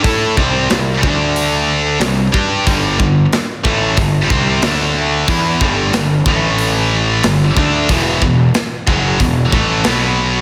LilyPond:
<<
  \new Staff \with { instrumentName = "Distorted electric guitar" } { \clef bass \time 4/4 \key g \major \tempo 4 = 92 <a e' a'>8 <c g c'>8 <c g>8 <d a d'>4. <c g>8 <g d' g'>8 | <g, d g>8 <g, d>8 r8 <a, e a>8 <g, d>8 <c g c'>8 <d a d'>4 | <e b e'>8 <g, d g>8 <g, d>8 <a, e a>4. <g, d>8 <d a d'>8 | <e, b, e>8 <e, b,>8 r8 <fis, cis fis>8 <e, b,>8 <a, e a>8 <b, fis b>4 | }
  \new Staff \with { instrumentName = "Picked electric bass" } { \clef bass \time 4/4 \key g \major a,8 c,8 c,8 d,4. c,8 g,8 | g,,8 g,,8 r8 a,,8 g,,8 c,8 d,4 | e,8 g,,8 g,,8 a,,4. g,,8 d,8 | e,,8 e,,8 r8 fis,,8 e,,8 a,,8 b,,4 | }
  \new DrumStaff \with { instrumentName = "Drums" } \drummode { \time 4/4 <hho bd>8 bd8 <hho sn>8 bd8 hho4 <hho sn>8 bd8 | <hho bd>8 bd8 <hho sn>8 bd8 <hho bd>8 bd8 <hho sn>4 | <hho bd>8 bd8 <hho sn>8 bd8 hho4 <hho sn>8 bd8 | <hho bd>8 bd8 <hho sn>8 bd8 <hho bd>8 bd8 <hho sn>4 | }
>>